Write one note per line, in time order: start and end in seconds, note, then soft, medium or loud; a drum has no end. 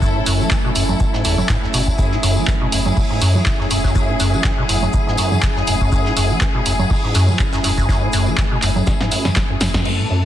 0.00 0.17 F#2 medium
0.00 9.81 F#3 medium
0.00 9.85 A3 medium
0.00 9.84 C#4 medium
0.00 9.81 E4 medium
0.00 1.97 A4 medium
0.00 9.85 E5 medium
0.00 2.47 G#5 medium
0.00 kick loud
0.00 tambourine soft
0.00 shaker medium
0.15 0.21 A2 medium
0.26 0.45 F#1 loud
0.26 0.41 F#2 loud
0.26 open hi-hat loud
0.26 tambourine medium
0.26 shaker medium
0.40 0.49 F#3 medium
0.40 tambourine medium
0.51 0.69 F#1 medium
0.51 0.58 E3 medium
0.51 kick loud
0.51 snare loud
0.51 clap loud
0.51 tambourine soft
0.51 shaker medium
0.64 0.71 B2 loud
0.75 0.94 F#1 medium
0.75 0.83 F#2 medium
0.75 open hi-hat loud
0.75 tambourine loud
0.75 shaker medium
0.89 0.95 F#2 medium
0.89 tambourine medium
0.89 low conga medium
1.00 1.05 B2 medium
1.00 kick loud
1.00 tambourine soft
1.00 shaker medium
1.13 1.23 G#2 medium
1.13 snare soft
1.24 1.43 F#1 loud
1.24 1.36 E2 loud
1.24 open hi-hat loud
1.24 tambourine medium
1.24 shaker medium
1.38 1.42 F#2 medium
1.38 tambourine medium
1.38 low conga medium
1.49 1.57 G#2 loud
1.49 kick loud
1.49 snare loud
1.49 clap loud
1.49 tambourine soft
1.49 shaker medium
1.63 1.66 E2 medium
1.63 snare soft
1.74 1.92 F#1 loud
1.74 1.81 B2 loud
1.74 open hi-hat loud
1.74 tambourine loud
1.74 shaker medium
1.87 1.91 E2 medium
1.87 kick medium
1.87 tambourine medium
1.98 2.14 F#2 medium
1.98 9.84 G#4 medium
1.98 kick loud
1.98 tambourine soft
1.98 shaker medium
2.11 2.18 A2 medium
2.11 snare soft
2.23 2.41 F#1 loud
2.23 2.38 F#2 loud
2.23 open hi-hat loud
2.23 tambourine medium
2.23 shaker medium
2.37 2.46 F#3 medium
2.37 tambourine medium
2.45 2.66 F#1 medium
2.45 2.55 E3 medium
2.45 6.41 F#5 medium
2.45 kick loud
2.45 snare loud
2.45 clap loud
2.45 shaker medium
2.61 2.67 B2 loud
2.72 2.91 F#1 medium
2.72 2.80 F#2 medium
2.72 open hi-hat loud
2.72 tambourine medium
2.72 shaker medium
2.85 2.92 F#2 medium
2.85 tambourine soft
2.85 low conga medium
2.97 3.01 B2 medium
2.97 kick loud
2.97 open hi-hat medium
2.97 tambourine soft
3.10 3.20 G#2 medium
3.21 3.36 F#2 loud
3.21 3.40 F#2 medium
3.21 open hi-hat loud
3.21 tambourine medium
3.21 shaker medium
3.35 3.48 F#3 medium
3.35 tambourine medium
3.35 low conga medium
3.46 3.51 A2 loud
3.46 kick loud
3.46 snare loud
3.46 clap loud
3.46 shaker medium
3.60 3.66 F#2 medium
3.60 snare soft
3.70 3.89 E1 medium
3.70 3.78 F#2 medium
3.70 open hi-hat loud
3.70 tambourine medium
3.70 shaker medium
3.84 3.93 F#2 loud
3.84 kick medium
3.84 snare medium
3.84 tambourine medium
3.95 4.10 F#2 medium
3.95 kick loud
3.95 tambourine soft
3.95 shaker medium
4.09 4.15 A2 medium
4.20 4.38 F#1 loud
4.20 4.35 F#2 loud
4.20 open hi-hat loud
4.20 tambourine medium
4.20 shaker medium
4.33 4.43 F#3 medium
4.33 tambourine soft
4.44 4.63 F#1 medium
4.44 4.52 E3 medium
4.44 kick loud
4.44 snare loud
4.44 clap loud
4.44 tambourine soft
4.44 shaker medium
4.58 4.64 B2 loud
4.69 4.87 F#1 medium
4.69 4.76 F#2 medium
4.69 open hi-hat loud
4.69 tambourine medium
4.69 shaker medium
4.82 4.89 F#2 medium
4.82 tambourine medium
4.82 low conga medium
4.93 4.98 B2 medium
4.93 kick loud
4.93 tambourine soft
4.93 shaker medium
5.07 5.16 G#2 medium
5.07 snare soft
5.17 5.37 F#2 medium
5.17 5.33 F#2 loud
5.17 open hi-hat loud
5.17 tambourine medium
5.17 shaker medium
5.32 5.44 F#3 medium
5.32 tambourine medium
5.32 low conga medium
5.42 5.47 A2 loud
5.42 kick loud
5.42 snare loud
5.42 clap loud
5.42 tambourine soft
5.42 shaker medium
5.56 5.62 F#2 medium
5.56 snare soft
5.67 5.86 E1 medium
5.67 5.75 F#2 medium
5.67 open hi-hat loud
5.67 tambourine loud
5.67 shaker medium
5.81 5.90 F#2 loud
5.81 kick medium
5.81 tambourine soft
5.92 6.07 F#2 medium
5.92 kick loud
5.92 tambourine soft
5.92 shaker medium
6.05 6.12 A2 medium
6.05 snare soft
6.17 6.35 F#1 loud
6.17 6.32 F#2 loud
6.17 open hi-hat medium
6.17 tambourine medium
6.17 shaker medium
6.30 6.39 F#3 medium
6.30 tambourine soft
6.39 6.60 F#1 medium
6.39 6.49 E3 medium
6.39 9.88 B5 medium
6.39 kick loud
6.39 snare loud
6.39 clap loud
6.39 shaker medium
6.55 6.61 B2 loud
6.66 6.84 F#1 medium
6.66 6.73 F#2 medium
6.66 open hi-hat loud
6.66 tambourine medium
6.66 shaker medium
6.79 6.85 F#2 medium
6.79 tambourine soft
6.79 low conga loud
6.90 6.95 B2 medium
6.90 kick loud
6.90 open hi-hat medium
6.90 tambourine soft
7.04 7.13 G#2 medium
7.14 7.30 F#2 loud
7.14 7.33 F#2 medium
7.14 snare loud
7.14 open hi-hat loud
7.14 tambourine medium
7.14 shaker medium
7.28 7.41 F#3 medium
7.28 tambourine medium
7.28 low conga loud
7.39 7.44 A2 loud
7.39 kick loud
7.39 clap loud
7.39 shaker medium
7.53 7.59 F#2 medium
7.53 snare loud
7.53 shaker medium
7.64 7.82 E1 medium
7.64 7.72 F#2 medium
7.64 snare loud
7.64 open hi-hat loud
7.64 tambourine medium
7.64 shaker medium
7.77 7.87 F#2 loud
7.77 kick medium
7.77 tambourine soft
7.77 shaker medium
7.89 8.04 F#2 medium
7.89 kick loud
7.89 snare loud
7.89 tambourine soft
7.89 shaker medium
8.02 8.08 A2 medium
8.13 8.32 F#1 loud
8.13 8.28 F#2 loud
8.13 open hi-hat loud
8.13 tambourine medium
8.13 shaker medium
8.26 8.36 F#3 medium
8.26 tambourine soft
8.38 8.56 F#1 medium
8.38 8.45 E3 medium
8.38 kick loud
8.38 snare loud
8.38 clap loud
8.38 shaker medium
8.51 8.57 B2 loud
8.62 8.81 F#1 loud
8.62 8.70 F#2 medium
8.62 clap soft
8.62 open hi-hat loud
8.62 tambourine medium
8.62 shaker medium
8.76 8.82 F#2 medium
8.76 tambourine soft
8.76 low conga loud
8.87 8.92 B2 medium
8.87 kick loud
8.87 snare medium
8.87 tambourine soft
8.87 shaker medium
9.00 9.10 G#2 medium
9.00 snare soft
9.00 snare medium
9.11 9.27 F#2 loud
9.11 9.30 F#2 medium
9.11 open hi-hat loud
9.11 tambourine medium
9.11 shaker medium
9.25 9.38 F#3 medium
9.25 snare medium
9.25 tambourine soft
9.25 low conga loud
9.35 9.41 A2 loud
9.35 kick loud
9.35 snare medium
9.35 snare loud
9.35 clap loud
9.35 tambourine soft
9.35 shaker medium
9.50 9.56 F#2 medium
9.60 9.79 F#1 medium
9.60 9.68 F#2 medium
9.60 snare medium
9.60 open hi-hat loud
9.60 tambourine loud
9.60 shaker medium
9.74 9.84 F#2 loud
9.74 kick medium
9.74 snare medium
9.74 tambourine soft
9.85 10.00 F#2 medium
9.85 10.25 F#2 medium
9.85 10.25 E3 medium
9.85 10.25 A4 medium
9.85 crash medium
9.99 10.05 A2 medium
10.10 10.25 F#2 loud